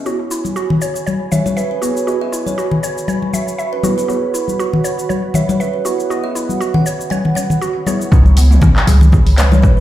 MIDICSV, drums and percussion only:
0, 0, Header, 1, 2, 480
1, 0, Start_track
1, 0, Tempo, 504202
1, 52, Time_signature, 4, 2, 24, 8
1, 9331, End_track
2, 0, Start_track
2, 0, Title_t, "Drums"
2, 58, Note_on_c, 9, 82, 36
2, 153, Note_off_c, 9, 82, 0
2, 296, Note_on_c, 9, 82, 86
2, 391, Note_off_c, 9, 82, 0
2, 426, Note_on_c, 9, 63, 55
2, 431, Note_on_c, 9, 82, 47
2, 521, Note_off_c, 9, 63, 0
2, 526, Note_off_c, 9, 82, 0
2, 536, Note_on_c, 9, 82, 39
2, 632, Note_off_c, 9, 82, 0
2, 669, Note_on_c, 9, 64, 84
2, 764, Note_off_c, 9, 64, 0
2, 778, Note_on_c, 9, 82, 85
2, 873, Note_off_c, 9, 82, 0
2, 911, Note_on_c, 9, 82, 50
2, 1006, Note_off_c, 9, 82, 0
2, 1019, Note_on_c, 9, 82, 39
2, 1024, Note_on_c, 9, 63, 66
2, 1114, Note_off_c, 9, 82, 0
2, 1120, Note_off_c, 9, 63, 0
2, 1255, Note_on_c, 9, 63, 58
2, 1258, Note_on_c, 9, 64, 77
2, 1258, Note_on_c, 9, 82, 87
2, 1350, Note_off_c, 9, 63, 0
2, 1353, Note_off_c, 9, 82, 0
2, 1354, Note_off_c, 9, 64, 0
2, 1389, Note_on_c, 9, 63, 90
2, 1393, Note_on_c, 9, 82, 50
2, 1485, Note_off_c, 9, 63, 0
2, 1488, Note_off_c, 9, 82, 0
2, 1499, Note_on_c, 9, 82, 39
2, 1594, Note_off_c, 9, 82, 0
2, 1738, Note_on_c, 9, 82, 86
2, 1834, Note_off_c, 9, 82, 0
2, 1873, Note_on_c, 9, 82, 47
2, 1969, Note_off_c, 9, 82, 0
2, 1980, Note_on_c, 9, 82, 36
2, 2075, Note_off_c, 9, 82, 0
2, 2219, Note_on_c, 9, 82, 82
2, 2315, Note_off_c, 9, 82, 0
2, 2345, Note_on_c, 9, 63, 54
2, 2354, Note_on_c, 9, 82, 47
2, 2440, Note_off_c, 9, 63, 0
2, 2449, Note_off_c, 9, 82, 0
2, 2461, Note_on_c, 9, 82, 39
2, 2557, Note_off_c, 9, 82, 0
2, 2584, Note_on_c, 9, 64, 82
2, 2679, Note_off_c, 9, 64, 0
2, 2699, Note_on_c, 9, 82, 81
2, 2794, Note_off_c, 9, 82, 0
2, 2835, Note_on_c, 9, 82, 47
2, 2930, Note_off_c, 9, 82, 0
2, 2932, Note_on_c, 9, 63, 68
2, 2939, Note_on_c, 9, 82, 36
2, 3027, Note_off_c, 9, 63, 0
2, 3034, Note_off_c, 9, 82, 0
2, 3070, Note_on_c, 9, 63, 53
2, 3165, Note_off_c, 9, 63, 0
2, 3173, Note_on_c, 9, 63, 59
2, 3179, Note_on_c, 9, 82, 84
2, 3268, Note_off_c, 9, 63, 0
2, 3274, Note_off_c, 9, 82, 0
2, 3313, Note_on_c, 9, 82, 47
2, 3408, Note_off_c, 9, 82, 0
2, 3419, Note_on_c, 9, 82, 37
2, 3514, Note_off_c, 9, 82, 0
2, 3649, Note_on_c, 9, 63, 90
2, 3657, Note_on_c, 9, 82, 82
2, 3745, Note_off_c, 9, 63, 0
2, 3752, Note_off_c, 9, 82, 0
2, 3793, Note_on_c, 9, 82, 49
2, 3888, Note_off_c, 9, 82, 0
2, 3898, Note_on_c, 9, 82, 38
2, 3993, Note_off_c, 9, 82, 0
2, 4137, Note_on_c, 9, 82, 82
2, 4233, Note_off_c, 9, 82, 0
2, 4264, Note_on_c, 9, 63, 51
2, 4274, Note_on_c, 9, 82, 47
2, 4359, Note_off_c, 9, 63, 0
2, 4369, Note_off_c, 9, 82, 0
2, 4378, Note_on_c, 9, 82, 36
2, 4473, Note_off_c, 9, 82, 0
2, 4506, Note_on_c, 9, 64, 85
2, 4602, Note_off_c, 9, 64, 0
2, 4614, Note_on_c, 9, 82, 81
2, 4710, Note_off_c, 9, 82, 0
2, 4750, Note_on_c, 9, 82, 50
2, 4845, Note_off_c, 9, 82, 0
2, 4854, Note_on_c, 9, 63, 68
2, 4857, Note_on_c, 9, 82, 35
2, 4949, Note_off_c, 9, 63, 0
2, 4952, Note_off_c, 9, 82, 0
2, 5084, Note_on_c, 9, 64, 80
2, 5086, Note_on_c, 9, 63, 64
2, 5095, Note_on_c, 9, 82, 86
2, 5179, Note_off_c, 9, 64, 0
2, 5181, Note_off_c, 9, 63, 0
2, 5190, Note_off_c, 9, 82, 0
2, 5228, Note_on_c, 9, 63, 106
2, 5230, Note_on_c, 9, 82, 47
2, 5323, Note_off_c, 9, 63, 0
2, 5326, Note_off_c, 9, 82, 0
2, 5337, Note_on_c, 9, 82, 37
2, 5432, Note_off_c, 9, 82, 0
2, 5574, Note_on_c, 9, 82, 86
2, 5669, Note_off_c, 9, 82, 0
2, 5709, Note_on_c, 9, 82, 47
2, 5805, Note_off_c, 9, 82, 0
2, 5817, Note_on_c, 9, 82, 39
2, 5912, Note_off_c, 9, 82, 0
2, 6055, Note_on_c, 9, 82, 83
2, 6151, Note_off_c, 9, 82, 0
2, 6181, Note_on_c, 9, 63, 53
2, 6188, Note_on_c, 9, 82, 47
2, 6276, Note_off_c, 9, 63, 0
2, 6283, Note_off_c, 9, 82, 0
2, 6295, Note_on_c, 9, 82, 38
2, 6390, Note_off_c, 9, 82, 0
2, 6419, Note_on_c, 9, 64, 100
2, 6514, Note_off_c, 9, 64, 0
2, 6533, Note_on_c, 9, 82, 85
2, 6628, Note_off_c, 9, 82, 0
2, 6669, Note_on_c, 9, 82, 49
2, 6765, Note_off_c, 9, 82, 0
2, 6768, Note_on_c, 9, 63, 67
2, 6777, Note_on_c, 9, 82, 37
2, 6863, Note_off_c, 9, 63, 0
2, 6872, Note_off_c, 9, 82, 0
2, 6900, Note_on_c, 9, 63, 51
2, 6905, Note_on_c, 9, 64, 74
2, 6995, Note_off_c, 9, 63, 0
2, 7000, Note_off_c, 9, 64, 0
2, 7011, Note_on_c, 9, 63, 58
2, 7016, Note_on_c, 9, 82, 89
2, 7106, Note_off_c, 9, 63, 0
2, 7111, Note_off_c, 9, 82, 0
2, 7140, Note_on_c, 9, 64, 80
2, 7149, Note_on_c, 9, 82, 46
2, 7235, Note_off_c, 9, 64, 0
2, 7244, Note_off_c, 9, 82, 0
2, 7254, Note_on_c, 9, 82, 38
2, 7350, Note_off_c, 9, 82, 0
2, 7488, Note_on_c, 9, 63, 82
2, 7495, Note_on_c, 9, 82, 81
2, 7583, Note_off_c, 9, 63, 0
2, 7590, Note_off_c, 9, 82, 0
2, 7628, Note_on_c, 9, 82, 50
2, 7723, Note_off_c, 9, 82, 0
2, 7730, Note_on_c, 9, 36, 123
2, 7734, Note_on_c, 9, 82, 54
2, 7825, Note_off_c, 9, 36, 0
2, 7829, Note_off_c, 9, 82, 0
2, 7861, Note_on_c, 9, 63, 68
2, 7868, Note_on_c, 9, 82, 27
2, 7956, Note_off_c, 9, 63, 0
2, 7963, Note_off_c, 9, 82, 0
2, 7966, Note_on_c, 9, 46, 96
2, 7973, Note_on_c, 9, 82, 96
2, 8061, Note_off_c, 9, 46, 0
2, 8068, Note_off_c, 9, 82, 0
2, 8101, Note_on_c, 9, 45, 81
2, 8108, Note_on_c, 9, 82, 39
2, 8196, Note_off_c, 9, 45, 0
2, 8201, Note_on_c, 9, 64, 127
2, 8203, Note_off_c, 9, 82, 0
2, 8211, Note_on_c, 9, 36, 116
2, 8213, Note_on_c, 9, 82, 56
2, 8296, Note_off_c, 9, 64, 0
2, 8306, Note_off_c, 9, 36, 0
2, 8308, Note_off_c, 9, 82, 0
2, 8342, Note_on_c, 9, 39, 84
2, 8349, Note_on_c, 9, 82, 27
2, 8437, Note_off_c, 9, 39, 0
2, 8444, Note_off_c, 9, 82, 0
2, 8449, Note_on_c, 9, 46, 93
2, 8451, Note_on_c, 9, 63, 93
2, 8456, Note_on_c, 9, 82, 96
2, 8544, Note_off_c, 9, 46, 0
2, 8546, Note_off_c, 9, 63, 0
2, 8551, Note_off_c, 9, 82, 0
2, 8578, Note_on_c, 9, 64, 104
2, 8580, Note_on_c, 9, 63, 67
2, 8590, Note_on_c, 9, 82, 40
2, 8673, Note_off_c, 9, 64, 0
2, 8676, Note_off_c, 9, 63, 0
2, 8685, Note_off_c, 9, 82, 0
2, 8685, Note_on_c, 9, 64, 102
2, 8692, Note_on_c, 9, 36, 120
2, 8695, Note_on_c, 9, 82, 53
2, 8780, Note_off_c, 9, 64, 0
2, 8787, Note_off_c, 9, 36, 0
2, 8790, Note_off_c, 9, 82, 0
2, 8820, Note_on_c, 9, 46, 55
2, 8828, Note_on_c, 9, 82, 25
2, 8916, Note_off_c, 9, 46, 0
2, 8923, Note_off_c, 9, 82, 0
2, 8929, Note_on_c, 9, 39, 88
2, 8929, Note_on_c, 9, 45, 83
2, 8929, Note_on_c, 9, 46, 94
2, 8936, Note_on_c, 9, 82, 96
2, 9024, Note_off_c, 9, 39, 0
2, 9024, Note_off_c, 9, 45, 0
2, 9024, Note_off_c, 9, 46, 0
2, 9032, Note_off_c, 9, 82, 0
2, 9062, Note_on_c, 9, 63, 106
2, 9071, Note_on_c, 9, 82, 39
2, 9157, Note_off_c, 9, 63, 0
2, 9166, Note_off_c, 9, 82, 0
2, 9172, Note_on_c, 9, 36, 121
2, 9177, Note_on_c, 9, 82, 53
2, 9267, Note_off_c, 9, 36, 0
2, 9272, Note_off_c, 9, 82, 0
2, 9331, End_track
0, 0, End_of_file